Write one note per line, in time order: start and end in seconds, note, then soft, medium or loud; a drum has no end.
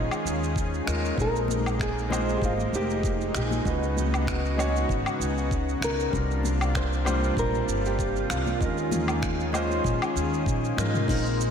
0.00 1.15 D#3 medium
0.00 0.85 G#3 medium
0.00 0.85 C#4 medium
0.00 1.15 C#4 medium
0.00 0.86 D#4 medium
0.00 0.87 F4 medium
0.00 1.15 F4 medium
0.00 1.15 G#4 medium
0.00 0.87 A#4 medium
0.00 1.20 C5 loud
0.11 low woodblock medium
0.11 shaker soft
0.25 0.81 D#2 medium
0.25 shaker medium
0.43 shaker soft
0.56 kick loud
0.56 shaker soft
0.74 shaker soft
0.85 1.10 D#2 medium
0.85 1.13 G#3 medium
0.85 1.14 C#4 medium
0.85 1.14 D#4 medium
0.85 1.15 F4 medium
0.85 1.15 A#4 medium
0.85 finger snap medium
0.85 shaker medium
1.05 shaker soft
1.15 2.35 A#1 medium
1.15 2.06 G#3 medium
1.15 3.63 G#3 medium
1.15 3.63 A#3 medium
1.15 2.06 C4 medium
1.15 2.07 D#4 medium
1.15 6.09 D#4 medium
1.15 2.08 F4 medium
1.15 kick loud
1.19 2.08 A#4 medium
1.19 1.78 A#4 loud
1.19 shaker soft
1.36 shaker soft
1.48 high conga medium
1.48 shaker medium
1.66 low woodblock medium
1.66 shaker soft
1.80 2.36 G#4 medium
1.80 finger snap medium
1.80 kick loud
1.80 shaker soft
1.98 shaker soft
2.09 2.34 G#3 medium
2.09 2.34 C4 medium
2.09 2.34 D#4 medium
2.09 2.35 F4 medium
2.09 2.35 C5 loud
2.09 high conga medium
2.09 low woodblock medium
2.13 shaker medium
2.29 shaker soft
2.37 2.43 G4 medium
2.42 2.65 G#1 medium
2.42 2.53 F4 medium
2.42 kick medium
2.42 shaker soft
2.58 high conga medium
2.58 shaker soft
2.73 3.28 F1 medium
2.73 3.32 G4 medium
2.73 shaker medium
2.90 shaker soft
3.03 kick loud
3.03 shaker soft
3.21 shaker soft
3.35 3.58 A#1 medium
3.35 4.14 G#4 medium
3.35 finger snap medium
3.35 shaker medium
3.51 high conga medium
3.51 shaker soft
3.63 4.83 C#2 loud
3.63 6.11 C#3 medium
3.63 4.54 G#3 medium
3.63 6.11 B3 medium
3.63 4.54 C#4 medium
3.63 4.55 D#4 medium
3.63 4.55 F#4 medium
3.63 6.11 F#4 medium
3.63 kick medium
3.63 shaker soft
3.68 4.56 B4 medium
3.83 shaker soft
3.97 high conga medium
3.97 shaker medium
4.14 4.55 G4 medium
4.14 low woodblock medium
4.14 shaker soft
4.27 finger snap medium
4.27 kick loud
4.27 shaker soft
4.45 shaker soft
4.56 4.81 G#3 medium
4.56 4.82 C#4 medium
4.56 4.82 D#4 medium
4.56 4.82 F#4 medium
4.56 4.83 C#5 loud
4.56 high conga medium
4.56 low woodblock medium
4.56 shaker medium
4.76 shaker soft
4.89 5.01 G#1 loud
4.89 kick medium
4.89 shaker soft
5.06 low woodblock medium
5.06 shaker soft
5.19 5.75 C#2 medium
5.19 shaker medium
5.38 shaker soft
5.51 kick medium
5.51 shaker soft
5.69 shaker soft
5.81 6.04 C#2 medium
5.81 6.76 A#4 loud
5.81 finger snap medium
5.81 shaker medium
6.00 shaker soft
6.11 7.30 C2 loud
6.11 8.58 C3 medium
6.11 7.01 G3 medium
6.11 8.58 A#3 medium
6.11 7.02 C4 medium
6.11 7.02 D4 medium
6.11 8.58 D4 medium
6.11 11.04 F4 medium
6.11 7.03 F4 medium
6.11 kick medium
6.11 shaker soft
6.16 7.04 A#4 medium
6.31 shaker soft
6.43 high conga medium
6.43 shaker medium
6.61 low woodblock medium
6.61 shaker soft
6.75 7.34 C5 loud
6.75 finger snap medium
6.75 kick loud
6.75 shaker soft
6.93 shaker soft
7.05 7.29 G3 loud
7.05 7.30 C4 medium
7.05 7.30 D4 medium
7.05 7.30 F4 medium
7.05 7.30 C5 loud
7.05 high conga medium
7.05 low woodblock medium
7.05 shaker medium
7.24 shaker soft
7.37 7.60 A#1 medium
7.37 7.87 A#4 medium
7.37 kick loud
7.37 shaker soft
7.53 high conga medium
7.53 shaker soft
7.67 8.23 G1 medium
7.67 shaker medium
7.86 8.30 G4 loud
7.86 shaker soft
7.99 kick medium
7.99 shaker soft
8.16 shaker soft
8.29 8.52 C2 medium
8.29 10.42 F4 medium
8.29 finger snap medium
8.29 shaker medium
8.46 high conga medium
8.46 shaker soft
8.59 9.78 D#2 loud
8.59 11.06 D#3 medium
8.59 9.49 G#3 medium
8.59 9.50 C#4 medium
8.59 11.06 C#4 medium
8.59 9.50 D#4 medium
8.59 9.51 F4 medium
8.59 11.06 G#4 medium
8.59 kick loud
8.59 shaker soft
8.64 9.51 A#4 medium
8.78 shaker soft
8.91 high conga medium
8.91 low conga medium
8.91 shaker medium
9.08 low woodblock medium
9.08 shaker soft
9.22 finger snap medium
9.22 kick loud
9.22 shaker soft
9.40 shaker soft
9.52 9.77 G#3 medium
9.52 9.77 C#4 medium
9.52 9.77 D#4 medium
9.52 9.78 F4 medium
9.52 9.78 C5 loud
9.52 high conga medium
9.52 low woodblock medium
9.52 shaker medium
9.71 shaker soft
9.84 9.96 A#1 medium
9.84 kick medium
9.84 shaker soft
10.02 low woodblock medium
10.02 shaker soft
10.15 10.45 D#2 medium
10.15 shaker medium
10.34 shaker soft
10.46 10.69 A#1 medium
10.46 kick medium
10.46 shaker soft
10.65 shaker soft
10.76 11.00 G#2 medium
10.76 11.04 G#3 medium
10.76 11.04 C#4 medium
10.76 11.05 D#4 medium
10.76 11.05 F4 medium
10.76 11.05 A#4 medium
10.76 finger snap medium
10.76 high tom medium
10.76 shaker medium
10.94 mid tom medium
10.94 shaker soft
11.06 11.51 A#1 medium
11.06 11.51 G#3 medium
11.06 11.51 A#3 medium
11.06 11.51 C4 medium
11.06 11.26 D#4 medium
11.06 11.51 D#4 medium
11.06 11.51 F4 medium
11.06 kick loud
11.06 crash loud
11.10 11.51 A#4 medium
11.10 shaker soft
11.26 shaker soft
11.41 shaker medium